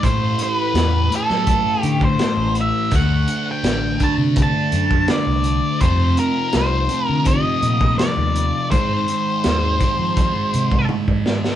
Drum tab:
HH |x-x-x-x-x-x-x-x-|x-x-x-x-x-x-x-x-|x-x-x-x-x-x-x-x-|x-x-x-x-x-x-----|
SD |----o--o----o---|----o-------o---|----o-------o---|----o---------oo|
T1 |----------------|----------------|----------------|------------o---|
BD |o-------o--o----|o-----o-o--o----|o-------o--o----|o-----o-o--o-o--|